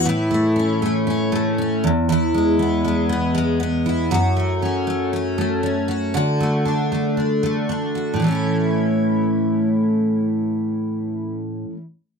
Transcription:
X:1
M:4/4
L:1/8
Q:"Swing 16ths" 1/4=118
K:A
V:1 name="Steel-string acoustic guitar"
[A,,E] A, C A, C A, C E,, | [E,,E] G, B, G, B, G, B, E | [F,,F] A, C A, C A, C F | [D,F] A, D A, D A, D F |
[A,,E,A,CE]8- | [A,,E,A,CE]8 |]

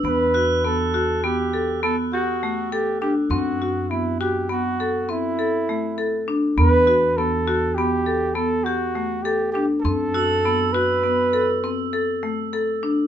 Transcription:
X:1
M:11/8
L:1/8
Q:1/4=101
K:Em
V:1 name="Crotales"
e' f'4 z6 | z8 z3 | z8 z3 | z e'4 z6 |]
V:2 name="Flugelhorn"
B2 A2 G2 A F2 G G | F2 E G F2 E4 z | B2 A2 G2 A F2 G G | A3 B4 z4 |]
V:3 name="Marimba"
B, F B, F B, A B, G A, A D | C F B, F B, A C A A, A D | B, F B, F B, A B, G A, A D | C F B, F B, A C A A, A D |]
V:4 name="Upright bass" clef=bass
E,,8- E,,3 | F,,8- F,,3 | E,,8- E,,3 | F,,8- F,,3 |]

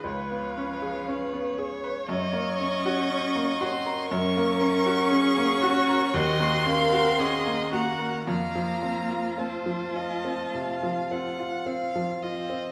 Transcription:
X:1
M:4/4
L:1/16
Q:1/4=58
K:Gblyd
V:1 name="Violin"
f8 z2 d'4 c'2 | [K:Fphr] d'8 c'6 b2 | b4 =a8 z2 c2 |]
V:2 name="Violin"
d4 _c2 d2 e8 | [K:Fphr] d2 B2 d4 e2 f2 e2 g2 | f4 c2 e2 f2 g2 f2 e2 |]
V:3 name="Viola"
_c4 d12 | [K:Fphr] B4 A2 G2 G2 B2 A2 G2 | F16 |]
V:4 name="Grand piano"
D,, _C D A D C A _c G,, B, D G D B, G B | [K:Fphr] G,, B, D G D B, G B E,, B, D G D B, G B | F,, F, C F C F, F C C, F, C F C F, F C |]
V:5 name="Cello"
F,8 z2 D4 C2 | [K:Fphr] D8 C6 B,2 | B,4 =A,8 z2 C2 |]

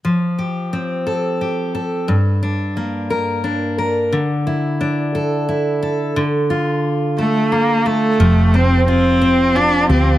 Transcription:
X:1
M:6/8
L:1/8
Q:3/8=59
K:F
V:1 name="Steel-string acoustic guitar"
F, G C A G A | G,, D B, B D B | D, E D A E A | D, F2 A F A |
[F,G] C F C F G |]
V:2 name="Cello"
z6 | z6 | z6 | z3 A, B, A,- |
A, C C2 D C |]
V:3 name="Fingered electric bass" clef=bass
z6 | z6 | z6 | z6 |
F,,,4- F,,, D,, |]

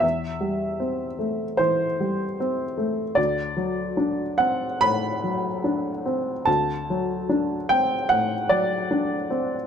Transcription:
X:1
M:4/4
L:1/8
Q:1/4=74
K:Dmix
V:1 name="Upright piano"
e4 c2 z2 | d3 f b4 | a3 g f d3 |]
V:2 name="Upright piano" clef=bass
E,, G, C A, E, G, C A, | D,, F, D C A,, F, D C | D,, F, D C A,, F, D C |]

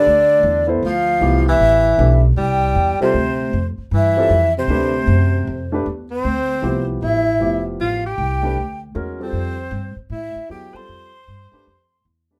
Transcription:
X:1
M:4/4
L:1/8
Q:"Swing" 1/4=155
K:Dphr
V:1 name="Flute"
d3 z f3 =e- | =e3 z g3 c- | c3 z =e3 c- | c6 z c- |
c3 z =e3 z | f g4 z2 c- | c3 z =e2 g c'- | c'6 z2 |]
V:2 name="Grand piano"
z3 [=B,=EAc] z2 [=E,B,EG]2- | [=E,=B,=EG] z [A,DG=B] z4 [G,CFA] | z4 z [G,CFA] z2 | [A,DG=B] z4 [A,DGB] z2 |
z2 [F,=B,=EG]3 z [F,B,EG]2- | [F,=B,=EG] z2 [A,DG=B] z2 [_A,_D^F_B] [G,C=F=A]- | [G,CFA] z4 z [^F,=B,=E_A] [G,C=F=A]- | [G,CFA] z2 [A,DG=B] z3 [A,DGB] |]
V:3 name="Tenor saxophone"
D,3 z F,3 =E,- | =E,3 z G,3 C,- | C,3 z =E,3 C,- | C,6 z C- |
C3 z =E3 z | F G4 z2 C- | C3 z =E2 G c- | c6 z2 |]
V:4 name="Upright bass" clef=bass
D,,2 =E,,2 D,,2 C,,2 | A,,,2 =B,,,2 C,,2 =E,, z | D,,2 F,, z G,,2 F,,2 | D,,2 ^F,,2 =F,,2 =E,,2 |
D,,2 C,,2 A,,,2 F,,,2 | A,,,2 C,,2 D,,2 =E,,2 | F,,2 G,, z A,, z =E,, z | F,,2 G,, z F,,2 =E,,2 |]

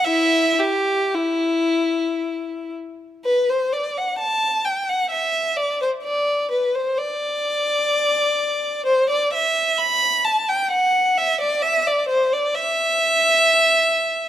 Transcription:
X:1
M:3/4
L:1/16
Q:1/4=64
K:Em
V:1 name="Violin"
[Ee]2 G2 E6 z2 | [K:Dmix] B c d f a2 g f e2 d c | d2 B c d8 | c d e2 b2 a g f2 e d |
e d c d e8 |]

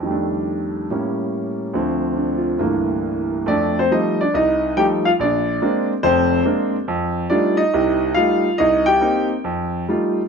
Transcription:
X:1
M:4/4
L:1/16
Q:"Swing" 1/4=140
K:Fmix
V:1 name="Grand piano"
z16 | z4 D2 F3 z6 z | [Dd]2 [Cc]2 e2 [Dd]2 [Ee]4 [Gg]2 [Ff]2 | [Dd]6 z2 [Cc]4 z4 |
z4 [Dd]2 [Ee]6 [Ff]4 | [Ee]2 [Gg]4 z8 z2 |]
V:2 name="Grand piano" clef=bass
[F,,E,G,A,D]8 [A,,G,B,^C]8 | [D,,D,F,C]8 [C,,G,,D,=E,A,B,]8 | [F,,A,]4 [F,G,A,E]2 z2 C,,4 [F,G,A,E]2 z2 | B,,,4 [_A,B,CD]2 z2 [F,,,F,,]4 [A,B,CD]2 z2 |
F,,4 [G,A,EF]2 z2 [C,,C,]4 [G,A,E]2 z2 | C,,4 [B,CE]2 z2 F,,4 [G,A,EF]2 z2 |]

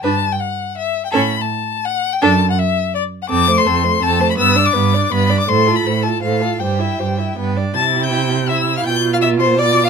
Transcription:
X:1
M:3/4
L:1/16
Q:1/4=164
K:D
V:1 name="Violin"
a3 g f4 e3 g | b3 a4- a f3 g | a3 f e4 d3 f | [K:C] d'3 c'4- c' a3 b |
e'3 d'4- d' b3 d' | c'3 b3 a2 f4 | g8- g2 z2 | a'3 g'4- g' e'3 f' |
g'3 f' e'2 c'2 d'3 z |]
V:2 name="Violin"
B2 z8 z2 | A2 z8 z2 | A2 z8 z2 | [K:C] A2 c2 A2 c2 A2 c2 |
B2 d2 B2 d2 B2 d2 | c2 A2 c2 A2 c2 A2 | c2 e2 c2 e2 B2 d2 | a3 g4- g e3 f |
g3 f e2 c2 d3 f |]
V:3 name="Viola"
D2 z8 z2 | C2 z8 z2 | D2 z8 z2 | [K:C] C2 A,2 C2 A,2 C2 A,2 |
B,2 D2 B,2 D2 B,2 D2 | A2 F2 A2 F2 A2 F2 | G2 E2 G2 E2 B,2 D2 | E8 E4 |
F8 F4 |]
V:4 name="Cello" clef=bass
G,,4 z8 | A,,4 z8 | F,,4 z8 | [K:C] F,,4 F,,4 F,,4 |
G,,4 G,,4 G,,4 | A,,4 A,,4 A,,4 | G,,4 G,,4 G,,4 | C,12 |
B,,12 |]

